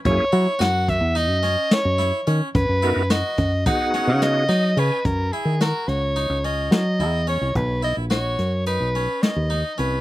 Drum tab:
HH |xxxxxxxxx|xxxxxxxxx|xxxxxxxxx|xxxxxxxxx|
SD |--o--ooo-|--o--ooo-|--o---o--|--o---o--|
BD |o--o-----|o--oo----|o--------|o--------|